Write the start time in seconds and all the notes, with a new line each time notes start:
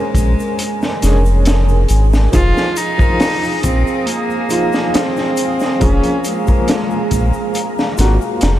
Already playing: G#3 C#4 A#4 C5 G#5
0.14 A#1, kick, closed hi-hat, shaker
0.40 shaker
0.59 closed hi-hat, shaker
0.82 snare, shaker
1.01 F1 G#3 C#4 G#4, snare, closed hi-hat, shaker
1.25 shaker
1.45 snare, closed hi-hat, shaker
1.69 shaker
1.88 G#1, closed hi-hat, shaker
2.13 snare, shaker
2.32 F1 F3 D#4 F4 G#4 F5 D#6, kick, closed hi-hat, shaker
2.57 snare, shaker
2.76 D#4, closed hi-hat, shaker
2.98 F3 D#4 A#4, kick, shaker
3.20 snare, open hi-hat, shaker
3.44 shaker
3.63 A#1 C4, kick, closed hi-hat, shaker
3.87 shaker
4.06 A#3, closed hi-hat, shaker
4.30 shaker
4.49 F3 D#4 F4, closed hi-hat, shaker
4.72 snare, shaker
4.93 C4, snare, closed hi-hat, shaker
5.17 snare, shaker
5.37 closed hi-hat, shaker
5.60 snare, shaker
5.80 F1 F3 A#3 C#4 G#4 A#5, kick, closed hi-hat, shaker
6.03 closed hi-hat, shaker
6.24 G#3, closed hi-hat, shaker
6.46 F3 A#3 A#4, kick, shaker
6.68 snare, closed hi-hat, shaker
6.90 shaker
7.11 A#1, kick, closed hi-hat, shaker
7.33 shaker
7.55 closed hi-hat, shaker
7.78 snare, shaker
7.97 G#1 A#3 F4 F#4, snare, closed hi-hat, shaker
8.21 shaker
8.41 F1, snare, closed hi-hat, shaker